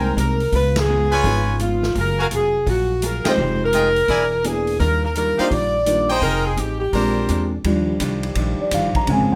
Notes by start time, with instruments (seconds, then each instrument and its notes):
Already playing: upright bass C2, upright piano G3 G#3 A#3 C4 D#4, trumpet section A#4 C5 G5 G#5, saxophone section A#4
0.17 upright bass C2, hollow-body jazz guitar G#3 C4 G4 A#4, saxophone section A#4, closed hi-hat
0.40 open hi-hat
0.52 upright bass C#2, hollow-body jazz guitar C#3 G#3 B3 F4, saxophone section B4, kick, open hi-hat
0.76 saxophone section G#4, snare, ride
0.89 hollow-body jazz guitar C#3 G#3 B3 F4
1.11 trumpet section F4 B4 C#5 G#5, open hi-hat
1.23 upright bass G#1, hollow-body jazz guitar C#3 G#3 B3 F4, upright piano F3 B3 C#4 D#4 G#4, kick, open hi-hat
1.59 hollow-body jazz guitar C#3 G#3 B3 F4, saxophone section F4, closed hi-hat
1.83 snare
1.95 upright bass F#1, hollow-body jazz guitar F#3 A#3 F4 G#4, saxophone section A#4, kick, open hi-hat
2.18 trumpet section F#4 A#4 F5 G#5, saxophone section A#4
2.31 upright bass F1, hollow-body jazz guitar F#3 A#3 F4 G#4, saxophone section G#4, closed hi-hat
2.66 upright bass A#1, hollow-body jazz guitar F#3 A#3 F4 G#4, saxophone section F#4, kick, open hi-hat
3.02 hollow-body jazz guitar F#3 A#3 F4 G#4, saxophone section A#4, closed hi-hat
3.25 upright piano G#3 C4 D#4 F4 G4, trumpet section F4 G#4 D#5 G5, saxophone section C5, muted upright bass stroke, snare, ride
3.38 upright bass F1, hollow-body jazz guitar F3 G#3 D#4 G4
3.64 saxophone section A#4
3.73 hollow-body jazz guitar F3 G#3 D#4 G4, trumpet section F4 G#4 D#5 G5, closed hi-hat
3.96 open hi-hat
4.08 upright bass E1, hollow-body jazz guitar E3 A#3 D4 G#4, trumpet section E4 A#4 D5 G#5, kick, open hi-hat
4.44 hollow-body jazz guitar E3 A#3 D4 G#4, upright piano A#3 B3 D4 E4 G#4, saxophone section G#4, closed hi-hat
4.67 open hi-hat
4.79 upright bass D#2, hollow-body jazz guitar D#3 G3 D4 F4, saxophone section A#4, kick, open hi-hat
5.04 saxophone section A#4
5.15 hollow-body jazz guitar D#3 G3 D4 F4, saxophone section A#4, closed hi-hat
5.38 upright piano A#3 D4 D#4 F4 G4, trumpet section D#4 G4 D5 F5, saxophone section C5, muted upright bass stroke, open hi-hat
5.50 upright bass A#1, hollow-body jazz guitar D#3 G3 D4 F4, saxophone section D5, kick, open hi-hat
5.86 hollow-body jazz guitar D#3 G3 D4 F4, upright piano A#3 D4 D#4 F4 A#4, closed hi-hat
6.09 trumpet section D#4 G#4 C5 G5, saxophone section C5, open hi-hat
6.21 upright bass F1, hollow-body jazz guitar F3 C4 D#4 G#4, saxophone section A#4, kick, open hi-hat
6.46 saxophone section G#4
6.57 upright bass A1, hollow-body jazz guitar F3 C4 D#4 G#4, saxophone section G4, closed hi-hat
6.80 saxophone section G4
6.93 upright bass A#1, hollow-body jazz guitar A#2 G#3 C4 D4, upright piano G#3 C4 D4 F4 A#4, trumpet section D4 A#4 C5 A#5, kick, open hi-hat
7.29 upright bass E2, hollow-body jazz guitar A#2 G#3 C4 D4, closed hi-hat
7.64 upright bass D#2, hollow-body jazz guitar D#3 G3 D4 F4, upright piano F3 G3 D4, trombone section F3 D4 D#4 G4, kick, ride
8.00 upright bass C2, hollow-body jazz guitar D#3 G3 D4 F4, kick, hi-hat pedal, ride
8.23 ride
8.35 upright bass A#1, hollow-body jazz guitar D#3 G3 D4 F4, kick, ride
8.60 upright piano D5, muted upright bass stroke
8.71 upright bass G1, hollow-body jazz guitar D#3 G3 D4 F4, upright piano F5, kick, hi-hat pedal, ride
8.95 upright piano A#5, muted upright bass stroke, kick, ride
9.07 upright bass A#1, hollow-body jazz guitar A#2 G#3 C#4 F4, upright piano C#3 G#3 C4 G#5, trombone section A#3 C#4 G#4, kick, ride
9.20 upright bass G#1
9.31 upright bass F1, upright piano G5